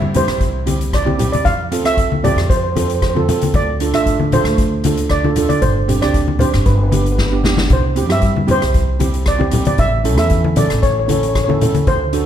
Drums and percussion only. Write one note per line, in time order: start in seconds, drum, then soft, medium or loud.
0.02 high conga medium
0.14 closed hi-hat medium
0.14 high conga medium
0.14 low conga medium
0.28 cross-stick medium
0.28 closed hi-hat soft
0.41 kick medium
0.41 closed hi-hat medium
0.67 closed hi-hat medium
0.67 high conga medium
0.81 closed hi-hat medium
0.93 kick medium
0.93 cross-stick medium
0.93 closed hi-hat medium
1.07 high conga medium
1.19 closed hi-hat medium
1.19 low conga medium
1.33 closed hi-hat medium
1.33 high conga medium
1.45 kick medium
1.45 closed hi-hat medium
1.45 low conga medium
1.72 closed hi-hat medium
1.85 cross-stick medium
1.85 closed hi-hat medium
1.97 kick medium
1.97 closed hi-hat medium
2.12 high conga medium
2.24 closed hi-hat medium
2.24 high conga medium
2.24 low conga medium
2.38 cross-stick medium
2.38 closed hi-hat soft
2.50 kick loud
2.50 closed hi-hat medium
2.76 closed hi-hat medium
2.76 high conga medium
2.90 closed hi-hat medium
3.02 kick medium
3.02 cross-stick medium
3.02 closed hi-hat soft
3.16 high conga medium
3.29 closed hi-hat medium
3.29 low conga medium
3.41 closed hi-hat medium
3.41 high conga medium
3.54 kick loud
3.54 closed hi-hat soft
3.54 low conga medium
3.80 closed hi-hat medium
3.94 cross-stick medium
3.94 closed hi-hat medium
4.06 kick medium
4.06 closed hi-hat medium
4.20 high conga medium
4.32 closed hi-hat medium
4.32 high conga medium
4.32 low conga medium
4.45 cross-stick medium
4.45 closed hi-hat medium
4.58 kick medium
4.58 closed hi-hat medium
4.84 closed hi-hat medium
4.84 high conga medium
4.97 closed hi-hat medium
5.09 kick medium
5.09 cross-stick medium
5.09 closed hi-hat medium
5.24 high conga medium
5.36 closed hi-hat medium
5.36 low conga medium
5.50 closed hi-hat medium
5.50 high conga medium
5.62 kick medium
5.62 closed hi-hat medium
5.62 low conga medium
5.89 closed hi-hat medium
5.89 low conga medium
6.02 cross-stick medium
6.02 closed hi-hat medium
6.14 kick medium
6.14 closed hi-hat medium
6.28 high conga medium
6.39 closed hi-hat medium
6.39 high conga medium
6.39 low conga medium
6.54 cross-stick medium
6.54 closed hi-hat medium
6.66 kick loud
6.66 closed hi-hat soft
6.92 closed hi-hat medium
6.92 high conga medium
7.06 closed hi-hat soft
7.18 kick medium
7.18 snare soft
7.44 snare medium
7.44 low conga medium
7.57 snare medium
7.57 high conga medium
7.70 kick medium
7.70 closed hi-hat soft
7.70 low conga medium
7.96 closed hi-hat medium
8.10 cross-stick medium
8.10 closed hi-hat medium
8.22 kick medium
8.22 closed hi-hat medium
8.36 high conga medium
8.48 closed hi-hat medium
8.48 high conga medium
8.48 low conga medium
8.62 cross-stick medium
8.62 closed hi-hat medium
8.74 kick loud
8.74 closed hi-hat medium
9.00 closed hi-hat medium
9.00 high conga medium
9.14 closed hi-hat medium
9.26 kick medium
9.26 cross-stick medium
9.26 closed hi-hat medium
9.41 high conga medium
9.51 closed hi-hat medium
9.51 low conga medium
9.65 closed hi-hat medium
9.65 high conga medium
9.78 kick medium
9.78 closed hi-hat medium
9.78 low conga medium
10.05 closed hi-hat medium
10.18 cross-stick medium
10.18 closed hi-hat medium
10.30 kick medium
10.30 closed hi-hat medium
10.44 high conga medium
10.56 closed hi-hat medium
10.56 high conga medium
10.56 low conga medium
10.70 cross-stick medium
10.70 closed hi-hat soft
10.83 kick medium
10.83 closed hi-hat soft
11.09 closed hi-hat medium
11.09 high conga medium
11.23 closed hi-hat medium
11.35 kick medium
11.35 cross-stick medium
11.35 closed hi-hat soft
11.50 high conga medium
11.61 closed hi-hat medium
11.61 low conga medium
11.74 closed hi-hat medium
11.74 high conga medium
11.87 kick medium
11.87 closed hi-hat soft
11.87 low conga medium
12.13 closed hi-hat medium